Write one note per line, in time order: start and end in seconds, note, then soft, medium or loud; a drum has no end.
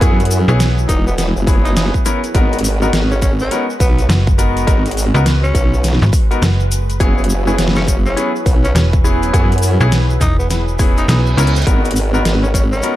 0.00 0.46 F#2 loud
0.00 2.31 F#3 medium
0.00 0.15 B3 loud
0.00 0.15 C#4 medium
0.00 2.31 E4 medium
0.00 0.15 E4 medium
0.00 2.31 G#4 medium
0.00 0.15 G#4 loud
0.00 2.31 B4 medium
0.00 kick loud
0.00 closed hi-hat medium
0.00 shaker medium
0.20 closed hi-hat soft
0.20 shaker soft
0.25 closed hi-hat medium
0.31 open hi-hat medium
0.31 shaker loud
0.48 0.87 B1 loud
0.48 0.57 B3 medium
0.48 0.57 C#4 medium
0.48 0.57 E4 medium
0.48 0.57 G#4 loud
0.48 shaker soft
0.60 snare loud
0.60 closed hi-hat medium
0.60 shaker medium
0.78 shaker soft
0.88 1.33 E1 loud
0.88 1.03 D#4 medium
0.88 kick medium
0.88 closed hi-hat medium
0.88 shaker medium
1.07 1.14 B3 medium
1.07 shaker soft
1.17 1.29 B3 medium
1.17 snare medium
1.17 closed hi-hat medium
1.17 shaker medium
1.36 1.92 F#1 medium
1.36 shaker soft
1.47 2.03 B3 medium
1.47 2.03 C#4 medium
1.47 2.03 E4 medium
1.47 2.03 G#4 medium
1.47 kick loud
1.47 open hi-hat medium
1.47 shaker medium
1.65 1.72 D#4 medium
1.65 closed hi-hat soft
1.65 shaker soft
1.76 1.88 D#4 medium
1.76 snare loud
1.76 closed hi-hat medium
1.76 shaker medium
1.94 kick medium
1.94 shaker soft
2.06 2.18 B3 medium
2.06 2.18 C#4 medium
2.06 2.18 E4 medium
2.06 2.18 A#4 medium
2.06 snare soft
2.06 closed hi-hat medium
2.06 shaker loud
2.24 closed hi-hat soft
2.24 shaker soft
2.35 2.91 G#1 loud
2.35 6.97 G#3 medium
2.35 2.54 B3 medium
2.35 2.54 D#4 medium
2.35 6.97 F#4 medium
2.35 2.54 F#4 medium
2.35 2.54 A#4 loud
2.35 12.96 B4 loud
2.35 kick loud
2.35 closed hi-hat medium
2.35 shaker soft
2.53 closed hi-hat soft
2.53 shaker soft
2.59 closed hi-hat medium
2.64 open hi-hat medium
2.64 shaker loud
2.82 2.90 B3 medium
2.82 2.90 D#4 medium
2.82 2.90 F#4 medium
2.82 2.90 A#4 medium
2.82 shaker soft
2.93 3.49 G#1 loud
2.93 snare loud
2.93 closed hi-hat medium
2.93 shaker medium
3.11 3.18 C#4 medium
3.11 shaker soft
3.22 3.34 C#4 medium
3.22 kick medium
3.22 snare soft
3.22 closed hi-hat medium
3.22 shaker medium
3.39 3.64 C#4 loud
3.39 shaker soft
3.51 3.64 B3 medium
3.51 3.64 D#4 medium
3.51 3.64 F#4 medium
3.51 3.64 A#4 medium
3.51 closed hi-hat medium
3.51 shaker medium
3.70 shaker soft
3.80 4.07 B1 loud
3.80 4.06 B3 medium
3.80 kick loud
3.80 open hi-hat medium
3.80 shaker medium
3.98 closed hi-hat soft
3.98 shaker soft
4.09 4.66 F#1 medium
4.09 snare loud
4.09 closed hi-hat medium
4.09 shaker medium
4.27 kick loud
4.27 shaker soft
4.38 4.65 B3 medium
4.38 4.65 D#4 medium
4.38 4.65 F#4 medium
4.38 4.65 A#4 medium
4.38 closed hi-hat medium
4.38 shaker medium
4.57 closed hi-hat soft
4.57 shaker soft
4.67 5.12 G#1 loud
4.67 4.80 B3 loud
4.67 4.80 D#4 medium
4.67 4.80 F#4 medium
4.67 4.80 A#4 loud
4.67 kick loud
4.67 closed hi-hat medium
4.67 shaker medium
4.86 closed hi-hat soft
4.86 shaker soft
4.91 closed hi-hat medium
4.97 open hi-hat medium
4.97 shaker medium
5.14 5.53 C#2 loud
5.14 5.23 B3 loud
5.14 5.22 D#4 medium
5.14 5.22 F#4 medium
5.14 5.23 A#4 loud
5.14 shaker soft
5.26 snare loud
5.26 closed hi-hat medium
5.26 shaker soft
5.44 5.84 C#4 loud
5.44 shaker soft
5.54 5.99 B1 loud
5.54 kick medium
5.54 closed hi-hat medium
5.54 shaker medium
5.74 shaker soft
5.84 snare medium
5.84 closed hi-hat medium
5.84 shaker medium
5.88 snare soft
5.93 snare soft
5.98 snare soft
6.02 6.11 G#1 loud
6.02 snare soft
6.02 shaker soft
6.05 snare soft
6.08 snare soft
6.11 kick loud
6.11 snare soft
6.11 open hi-hat medium
6.11 shaker medium
6.31 6.39 B3 medium
6.31 6.39 D#4 medium
6.31 6.39 F#4 medium
6.31 6.39 A#4 medium
6.31 closed hi-hat soft
6.31 shaker soft
6.42 6.99 F#1 loud
6.42 snare loud
6.42 closed hi-hat medium
6.42 shaker medium
6.60 shaker soft
6.72 closed hi-hat medium
6.72 shaker medium
6.90 closed hi-hat soft
6.90 shaker soft
7.00 7.57 F#1 loud
7.00 11.62 F#3 medium
7.00 7.20 B3 medium
7.00 7.20 C#4 medium
7.00 11.62 E4 medium
7.00 7.20 E4 medium
7.00 11.62 G#4 medium
7.00 7.20 G#4 loud
7.00 kick loud
7.00 closed hi-hat medium
7.00 shaker medium
7.18 shaker soft
7.24 closed hi-hat medium
7.29 shaker medium
7.47 7.55 B3 medium
7.47 7.55 C#4 medium
7.47 7.55 E4 medium
7.47 7.55 G#4 medium
7.47 shaker soft
7.58 8.15 F#1 loud
7.58 snare loud
7.58 closed hi-hat medium
7.58 shaker soft
7.68 snare medium
7.75 7.84 C#4 medium
7.75 snare medium
7.75 shaker soft
7.82 snare medium
7.88 7.99 C#4 medium
7.88 kick medium
7.88 snare soft
7.88 closed hi-hat medium
7.88 shaker loud
8.06 8.29 C#4 loud
8.06 shaker soft
8.16 8.30 B3 medium
8.16 8.30 C#4 medium
8.16 8.30 E4 medium
8.16 8.30 G#4 medium
8.16 closed hi-hat medium
8.16 shaker soft
8.36 shaker soft
8.46 8.73 B1 loud
8.46 kick loud
8.46 open hi-hat medium
8.46 shaker medium
8.64 8.71 C#4 medium
8.64 closed hi-hat soft
8.64 shaker soft
8.75 9.32 E1 medium
8.75 8.87 C#4 medium
8.75 snare loud
8.75 closed hi-hat medium
8.75 shaker medium
8.93 kick loud
8.93 shaker soft
9.04 9.31 B3 medium
9.04 9.31 C#4 medium
9.04 9.31 E4 medium
9.04 9.31 G#4 loud
9.04 shaker medium
9.23 closed hi-hat soft
9.23 shaker soft
9.33 9.78 F#2 loud
9.33 9.46 B3 loud
9.33 9.46 C#4 medium
9.33 9.46 E4 medium
9.33 9.46 G#4 loud
9.33 kick loud
9.33 closed hi-hat medium
9.33 shaker soft
9.52 closed hi-hat medium
9.52 shaker soft
9.58 closed hi-hat medium
9.62 open hi-hat medium
9.62 shaker medium
9.80 10.19 B1 loud
9.80 9.89 B3 medium
9.80 9.89 C#4 medium
9.80 9.89 E4 medium
9.80 9.89 G#4 loud
9.80 shaker soft
9.92 snare loud
9.92 closed hi-hat medium
9.92 shaker medium
10.10 shaker soft
10.21 11.06 E1 loud
10.21 10.35 D#4 loud
10.21 kick medium
10.21 closed hi-hat medium
10.21 shaker medium
10.39 10.46 B3 medium
10.39 shaker soft
10.50 10.62 B3 medium
10.50 snare medium
10.50 closed hi-hat medium
10.50 reverse cymbal medium
10.50 shaker soft
10.68 shaker soft
10.79 11.35 B3 medium
10.79 11.35 C#4 medium
10.79 11.35 E4 medium
10.79 11.35 G#4 medium
10.79 kick loud
10.79 open hi-hat medium
10.79 shaker medium
10.97 11.04 D#4 medium
10.97 closed hi-hat soft
10.97 shaker soft
11.08 11.36 B1 loud
11.08 11.20 D#4 medium
11.08 snare loud
11.08 closed hi-hat medium
11.08 shaker medium
11.26 shaker soft
11.37 11.65 C#2 medium
11.37 11.50 B3 medium
11.37 11.50 C#4 medium
11.37 11.50 E4 medium
11.37 11.50 A#4 medium
11.37 closed hi-hat medium
11.37 shaker medium
11.47 closed hi-hat medium
11.56 closed hi-hat soft
11.56 shaker soft
11.62 closed hi-hat soft
11.66 12.23 G#1 loud
11.66 12.96 G#3 medium
11.66 11.86 B3 medium
11.66 11.86 D#4 medium
11.66 11.86 F#4 medium
11.66 12.96 F#4 medium
11.66 11.86 A#4 loud
11.66 kick loud
11.66 closed hi-hat medium
11.66 shaker medium
11.85 closed hi-hat medium
11.85 shaker soft
11.91 closed hi-hat medium
11.96 open hi-hat medium
11.96 shaker loud
12.14 12.22 B3 medium
12.14 12.22 D#4 medium
12.14 12.22 F#4 medium
12.14 12.22 A#4 medium
12.14 shaker soft
12.25 12.81 G#1 loud
12.25 snare loud
12.25 closed hi-hat medium
12.25 shaker medium
12.43 12.50 C#4 medium
12.43 shaker soft
12.54 12.65 C#4 medium
12.54 kick medium
12.54 snare soft
12.54 closed hi-hat medium
12.54 shaker medium
12.72 12.96 C#4 loud
12.72 shaker soft
12.82 12.96 B3 medium
12.82 12.96 D#4 medium
12.82 12.96 F#4 medium
12.82 12.96 A#4 medium
12.82 closed hi-hat medium
12.82 shaker soft